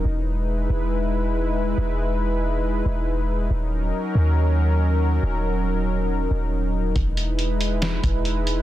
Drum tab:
HH |--------|--------|--------|--------|
SD |--------|--------|--------|--------|
BD |--------|--------|--------|--------|

HH |xxxxxxxx|
SD |----o---|
BD |o----o--|